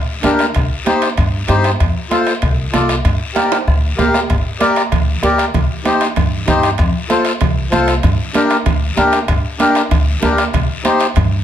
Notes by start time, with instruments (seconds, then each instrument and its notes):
Already playing: upright bass D2
0.23 upright bass D2, accordion D4 G4 A#4, bombo rim, high conga, high timbale, low timbale, short guiro
0.39 bombo rim, high timbale, short guiro
0.55 upright bass C2, bombo low, bombo rim, high conga, high timbale, long guiro
0.86 accordion D#4 G4 C5, bombo rim, high conga, high timbale, short guiro
1.02 bombo rim, high timbale, short guiro
1.17 upright bass G2, bombo low, bombo rim, high conga, high timbale, long guiro
1.48 upright bass G2, accordion D#4 G4 C5, bombo rim, high conga, high timbale, low timbale, short guiro
1.64 bombo rim, high timbale, short guiro
1.80 upright bass F2, bombo low, bombo rim, high conga, high timbale, long guiro
2.10 accordion F4 A4 C5, bombo rim, high conga, high timbale, short guiro
2.27 bombo rim, high timbale, short guiro
2.42 upright bass C2, bombo low, bombo rim, high conga, high timbale, long guiro
2.73 upright bass C2, accordion F4 A4 D5, bombo rim, high conga, high timbale, short guiro
2.89 bombo rim, high timbale, short guiro
3.05 upright bass G2, bombo low, bombo rim, high conga, high timbale, long guiro
3.35 accordion G4 A#4 D5, bombo rim, high conga, high timbale, short guiro
3.52 bombo rim, high timbale, short guiro
3.67 upright bass D2, bombo low, bombo rim, high conga, long guiro
3.97 upright bass D2, accordion G4 A#4 F5, bombo low, bombo rim, high conga, low timbale, short guiro
4.14 bombo rim, low timbale, short guiro
4.30 upright bass G1, bombo low, bombo rim, high conga, high timbale, long guiro
4.60 accordion G4 A#4 D5, bombo rim, high conga, high timbale, short guiro
4.76 bombo rim, high timbale, short guiro
4.92 upright bass D2, bombo low, bombo rim, high conga, low conga, high timbale, long guiro
5.23 upright bass D2, accordion G4 A#4 D5, bombo rim, high conga, high timbale, low timbale, short guiro
5.38 bombo rim, high timbale, short guiro
5.54 upright bass C2, bombo low, bombo rim, high conga, low conga, high timbale, long guiro
5.84 accordion D#4 G4 C5, bombo rim, high conga, high timbale, short guiro
6.01 bombo rim, high timbale, short guiro
6.16 upright bass G2, bombo low, bombo rim, high conga, low conga, high timbale, long guiro
6.47 upright bass G2, accordion D#4 G4 C5, bombo low, bombo rim, high conga, low conga, high timbale, short guiro
6.63 bombo rim, high timbale, short guiro
6.78 upright bass F2, bombo low, bombo rim, high conga, high timbale, long guiro
7.10 accordion F4 A4 C5, bombo rim, high conga, high timbale, short guiro
7.25 bombo rim, high timbale, short guiro
7.41 upright bass C2, bombo low, bombo rim, high conga, low conga, high timbale, long guiro
7.71 upright bass C2, accordion F4 A4 C5, bombo rim, high conga, high timbale, short guiro
7.88 bombo rim, high timbale, short guiro
8.03 upright bass G2, bombo low, bombo rim, high conga, low conga, high timbale, long guiro
8.34 accordion D4 G4 A#4, bombo rim, high conga, high timbale, short guiro
8.50 bombo rim, high timbale, short guiro
8.66 upright bass D2, bombo low, bombo rim, high conga, low conga, high timbale, long guiro
8.97 upright bass D2, accordion D4 G4 A#4, bombo rim, high conga, high timbale, short guiro
9.12 bombo rim, high timbale, short guiro
9.28 upright bass G2, bombo low, bombo rim, high conga, high timbale, long guiro
9.59 accordion D4 G4 A#4, bombo rim, high conga, high timbale, short guiro
9.75 bombo rim, high timbale, short guiro
9.91 upright bass D2, bombo low, bombo rim, high conga, low conga, high timbale, long guiro
10.22 upright bass D2, accordion D4 G4 A#4, bombo rim, high conga, high timbale, low timbale, short guiro
10.38 bombo rim, high timbale, short guiro
10.53 upright bass C2, bombo low, bombo rim, high conga, low conga, high timbale, long guiro
10.84 accordion D#4 G4 C5, bombo rim, high conga, high timbale, short guiro
11.00 bombo rim, high timbale, short guiro
11.15 upright bass G2, bombo low, bombo rim, high conga, low conga, high timbale, long guiro